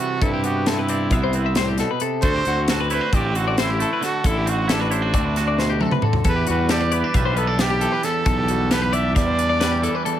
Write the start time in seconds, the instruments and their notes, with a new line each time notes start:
Already playing: clean electric guitar E3 G3 C4 E4
0.00 clean electric guitar C3 A4, trumpet F#4
0.21 picked electric bass G2, clean electric guitar C3 A4, trumpet E4, kick, closed hi-hat
0.33 clean electric guitar G4
0.43 clean electric guitar B3 F#4, trumpet G4, closed hi-hat
0.66 clean electric guitar C4 A4, trumpet E4, snare, closed hi-hat
0.79 clean electric guitar B4
0.89 clean electric guitar C4 D5, closed hi-hat
1.11 picked electric bass C2, clean electric guitar B3 E5, kick, closed hi-hat
1.24 clean electric guitar C5
1.33 clean electric guitar C4 B4, closed hi-hat
1.46 clean electric guitar E5
1.55 clean electric guitar A2 C5, snare, closed hi-hat
1.68 clean electric guitar G4
1.78 clean electric guitar B2 A4, snare, closed hi-hat
1.91 clean electric guitar B4
2.00 clean electric guitar C3 A4, closed hi-hat
2.22 picked electric bass D2, clean electric guitar D3 A3 C4 F#4 A4, trumpet C5, kick, closed hi-hat
2.36 clean electric guitar G4
2.45 picked electric bass D2, clean electric guitar C4 F#4, closed hi-hat
2.68 clean electric guitar F#4 A4, snare, closed hi-hat
2.80 clean electric guitar B4
2.90 clean electric guitar E4 C5, trumpet B4, closed hi-hat
3.01 clean electric guitar F#4
3.13 picked electric bass A1, clean electric guitar C4 D5, trumpet G4, kick, closed hi-hat
3.26 clean electric guitar B4
3.35 clean electric guitar C4 A4, trumpet F#4, closed hi-hat
3.48 clean electric guitar D5
3.58 clean electric guitar C4 C5, trumpet E4, snare, closed hi-hat
3.70 clean electric guitar G4
3.79 clean electric guitar A3 A4, closed hi-hat
3.93 clean electric guitar B4
4.01 clean electric guitar D3 A4, trumpet F#4, snare, closed hi-hat
4.24 picked electric bass A1, clean electric guitar D3 A4, trumpet E4, kick, closed hi-hat
4.37 clean electric guitar G4
4.46 clean electric guitar C4 F#4, trumpet F#4, closed hi-hat
4.68 trumpet D4, clean electric guitar E4 A4, snare, closed hi-hat
4.80 clean electric guitar F#4 B4
4.91 clean electric guitar E4 C5, closed hi-hat
5.02 clean electric guitar F#4
5.14 picked electric bass D2, clean electric guitar C4 D5, kick, closed hi-hat
5.25 clean electric guitar B4
5.36 clean electric guitar F#4 A4, snare, closed hi-hat
5.48 clean electric guitar D5
5.57 clean electric guitar B2 C5, snare
5.70 clean electric guitar G4
5.81 clean electric guitar C3 A4, high tom
5.91 clean electric guitar B4, mid tom
6.02 clean electric guitar D3 A4, mid tom
6.13 floor tom
6.24 picked electric bass E2, clean electric guitar E2 A4, trumpet B4, kick, closed hi-hat
6.36 clean electric guitar G4
6.47 picked electric bass E2, clean electric guitar G3 F#4, trumpet B4, closed hi-hat
6.69 clean electric guitar G4 A4, trumpet D5, snare, closed hi-hat
6.81 clean electric guitar B4
6.92 clean electric guitar B3 D5, trumpet B4, closed hi-hat
7.04 clean electric guitar D4
7.14 picked electric bass B1, clean electric guitar G3 E5, kick, closed hi-hat
7.25 clean electric guitar C5
7.36 clean electric guitar B3 B4, trumpet A4, closed hi-hat
7.47 clean electric guitar D4 D5
7.59 clean electric guitar G3 B4, trumpet G4, snare, closed hi-hat
7.70 clean electric guitar G4
7.81 clean electric guitar E3 A4, closed hi-hat
7.92 clean electric guitar B4
8.03 clean electric guitar E2 A4, trumpet A4, snare, closed hi-hat
8.26 picked electric bass B1, clean electric guitar E2 A4, kick, closed hi-hat
8.38 clean electric guitar G4
8.48 clean electric guitar G3 F#4, closed hi-hat
8.71 clean electric guitar G4 A4, trumpet B4, snare, closed hi-hat
8.82 clean electric guitar B4
8.93 clean electric guitar D4 D5, trumpet E5, closed hi-hat
9.15 picked electric bass E2, clean electric guitar G3 E5, trumpet D5, kick, snare, closed hi-hat
9.27 clean electric guitar C5
9.38 clean electric guitar D4 B4, closed hi-hat
9.50 clean electric guitar D5
9.60 clean electric guitar G3 B4, snare, closed hi-hat
9.72 clean electric guitar G4
9.83 clean electric guitar E3 A4, closed hi-hat
9.95 clean electric guitar B4
10.05 clean electric guitar E2 A4, closed hi-hat